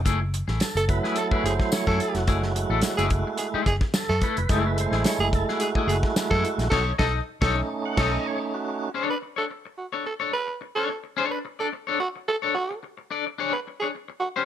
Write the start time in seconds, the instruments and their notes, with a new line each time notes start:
0.05 fingered electric bass F#1, clean electric guitar A3 E4 G#4, kick, closed hi-hat
0.21 muted clean electric guitar stroke
0.34 muted clean electric guitar stroke, closed hi-hat
0.48 fingered electric bass A1, clean electric guitar A3 E4 G#4, snare
0.60 tonewheel organ A4, muted fingered electric bass stroke, muted clean electric guitar stroke, snare, closed hi-hat, tambourine
0.75 fingered electric bass F#1, tenor saxophone A4, muted clean electric guitar stroke, closed hi-hat
0.88 tonewheel organ F#3 A3 E4 B4, kick, closed hi-hat
1.03 clean electric guitar A3 E4 G#4, tonewheel organ B4, snare
1.16 tonewheel organ A4, tenor saxophone A4, muted clean electric guitar stroke, closed hi-hat
1.31 clean electric guitar A3 E4 G#4, tonewheel organ B4, muted fingered electric bass stroke, kick
1.44 fingered electric bass F#1, tenor saxophone G#4, tonewheel organ C5, muted clean electric guitar stroke, closed hi-hat
1.60 muted clean electric guitar stroke, kick, snare
1.72 tonewheel organ C#5, muted clean electric guitar stroke, snare, closed hi-hat, tambourine
1.87 fingered electric bass F#2, clean electric guitar A3 E4 G#4, tenor saxophone A4, kick, snare
2.00 tonewheel organ A4, muted clean electric guitar stroke, closed hi-hat
2.14 fingered electric bass F1, tonewheel organ F#4, muted clean electric guitar stroke, snare, closed hi-hat
2.27 fingered electric bass F#1, tonewheel organ G#3 A3 E4, clean electric guitar A3 E4 G#4, kick, closed hi-hat
2.43 muted clean electric guitar stroke, snare
2.55 tonewheel organ G#3 A3 E4, muted clean electric guitar stroke, closed hi-hat
2.69 fingered electric bass A1, clean electric guitar A3 E4 A4
2.81 muted clean electric guitar stroke, snare, closed hi-hat, tambourine
2.97 fingered electric bass F#1, clean electric guitar A3 E4 G#4, tenor saxophone G#4, closed hi-hat
3.10 muted clean electric guitar stroke, kick, closed hi-hat
3.27 muted clean electric guitar stroke
3.38 tonewheel organ G#3 A3 E4, tenor saxophone G#4, muted clean electric guitar stroke, closed hi-hat
3.54 clean electric guitar A3 E4 G#4, muted fingered electric bass stroke
3.66 fingered electric bass F#1, tenor saxophone G#4, muted clean electric guitar stroke, kick, snare, closed hi-hat
3.81 muted clean electric guitar stroke, kick, snare
3.94 tonewheel organ A4, muted clean electric guitar stroke, snare, closed hi-hat, tambourine
4.09 fingered electric bass F#2, tenor saxophone A4, muted clean electric guitar stroke, snare
4.21 clean electric guitar A3 E4 A4, tonewheel organ B4, kick, closed hi-hat
4.37 fingered electric bass F1, tonewheel organ B4, muted clean electric guitar stroke, closed hi-hat
4.49 fingered electric bass F#1, tonewheel organ G#3 A3 E4 A4, clean electric guitar A3 E4 G#4, kick, closed hi-hat
4.65 tonewheel organ B4, muted clean electric guitar stroke
4.78 tonewheel organ C5, muted clean electric guitar stroke, closed hi-hat
4.91 fingered electric bass A1, clean electric guitar A3 E4 G#4, snare
5.04 tonewheel organ C#5, muted fingered electric bass stroke, muted clean electric guitar stroke, snare, closed hi-hat, tambourine
5.19 fingered electric bass F#1, tenor saxophone G#4, muted clean electric guitar stroke
5.33 tonewheel organ A4, kick, closed hi-hat
5.49 clean electric guitar A3 E4 G#4, tonewheel organ F#4, snare
5.60 tenor saxophone G#4, muted clean electric guitar stroke, closed hi-hat
5.75 clean electric guitar A3 E4 G#4, muted fingered electric bass stroke, kick
5.87 fingered electric bass F#1, tenor saxophone G#4, muted clean electric guitar stroke, closed hi-hat
6.03 muted clean electric guitar stroke, kick, snare
6.16 muted clean electric guitar stroke, snare, closed hi-hat, tambourine
6.30 fingered electric bass F#2, clean electric guitar A3 E4 G#4, tenor saxophone A4, kick, snare
6.44 muted clean electric guitar stroke, closed hi-hat
6.58 fingered electric bass A#1, muted clean electric guitar stroke, snare, closed hi-hat
6.70 fingered electric bass B1, clean electric guitar D#4 A4 C#5, tenor saxophone A4, kick, snare, crash
6.98 fingered electric bass B1, clean electric guitar D#4 A4 D#5, tenor saxophone A4, kick, snare
7.41 fingered electric bass B1, clean electric guitar D#4 A4 C#5, tenor saxophone A4, kick, snare
7.54 tonewheel organ A3 C#4 D#4
7.85 tonewheel organ F#5
7.97 fingered electric bass B1, clean electric guitar D#4 A4 C#5, tenor saxophone A4, tonewheel organ D#5, kick, snare, crash
8.27 tonewheel organ C#5
8.54 tonewheel organ F#4
8.94 clean electric guitar D4 A4 C#5
9.10 tenor saxophone B4, muted clean electric guitar stroke
9.22 muted clean electric guitar stroke
9.36 clean electric guitar D4 A4 C#5, tenor saxophone A4
9.50 muted clean electric guitar stroke
9.65 muted clean electric guitar stroke
9.78 tenor saxophone F#4
9.93 clean electric guitar D4 A4 C#5
10.06 tenor saxophone A4, muted clean electric guitar stroke
10.20 clean electric guitar D4 A4 C#5
10.33 tenor saxophone B4, muted clean electric guitar stroke
10.47 muted clean electric guitar stroke
10.61 muted clean electric guitar stroke
10.75 clean electric guitar D4 A4 C#5, tenor saxophone A4
10.89 muted clean electric guitar stroke
11.04 muted clean electric guitar stroke
11.17 clean electric guitar D4 A4 C#5
11.31 tenor saxophone B4, muted clean electric guitar stroke
11.45 muted clean electric guitar stroke
11.59 clean electric guitar D4 A4 D5, tenor saxophone A4
11.73 muted clean electric guitar stroke
11.87 clean electric guitar D4 A4 C#5
12.00 tenor saxophone F#4, muted clean electric guitar stroke
12.16 muted clean electric guitar stroke
12.28 tenor saxophone A4, muted clean electric guitar stroke
12.42 clean electric guitar D4 A4 C#5
12.55 tenor saxophone F#4, muted clean electric guitar stroke
12.71 muted clean electric guitar stroke
12.83 muted clean electric guitar stroke
12.98 muted clean electric guitar stroke
13.11 clean electric guitar D4 A4 D5
13.27 muted clean electric guitar stroke
13.38 clean electric guitar D4 G#4 C#5
13.53 tenor saxophone B4
13.67 muted clean electric guitar stroke
13.80 clean electric guitar D4 G#4 C#5, tenor saxophone G#4
13.95 muted clean electric guitar stroke
14.08 muted clean electric guitar stroke
14.20 tenor saxophone F#4
14.36 clean electric guitar D4 G#4 C#5